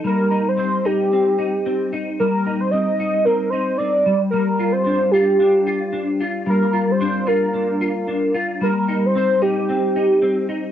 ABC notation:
X:1
M:4/4
L:1/16
Q:"Swing 16ths" 1/4=112
K:Cdor
V:1 name="Soft synth lead"
B3 c c2 G8 z2 | B3 c e4 B2 c2 d3 z | B3 c c2 G8 z2 | B3 c c2 B8 z2 |
B3 c c2 G8 z2 |]
V:2 name="Clean electric guitar"
G,2 E2 C2 E2 C2 E2 C2 E2 | G,2 E2 C2 E2 C2 E2 C2 G,2 | G,2 F2 D2 F2 D2 F2 D2 F2 | G,2 F2 D2 F2 D2 F2 D2 F2 |
G,2 E2 C2 E2 C2 E2 C2 E2 |]